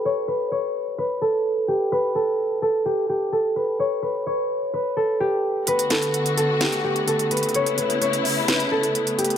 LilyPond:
<<
  \new Staff \with { instrumentName = "Harp" } { \time 4/4 \key b \minor \tempo 4 = 128 cis''8 b'8 cis''4 b'8 a'4 g'8 | b'8 a'4 a'8 g'8 g'8 a'8 b'8 | cis''8 b'8 cis''4 b'8 a'8 g'8 r8 | b'8 a'4 a'8 g'8 g'8 a'8 b'8 |
cis''8 b'8 cis''4 b'8 a'4 g'8 | }
  \new Staff \with { instrumentName = "String section" } { \time 4/4 \key b \minor << { r1 | r1 | r1 | <d fis'>1 |
<cis e'>1 | } \\ { r1 | r1 | r1 | <a b>1~ |
<a b>1 | } >> }
  \new DrumStaff \with { instrumentName = "Drums" } \drummode { \time 4/4 r4 r4 r4 r4 | r4 r4 r4 r4 | r4 r4 r4 r4 | hh16 hh16 <hh sn>16 hh16 hh16 hh16 hh8 <hh sn>16 hh8 hh16 hh16 hh16 hh32 hh32 hh32 hh32 |
hh16 hh16 hh16 hh16 hh16 hh16 hho8 <hh sn>16 hh8 hh16 hh16 hh16 hh32 hh32 hh16 | }
>>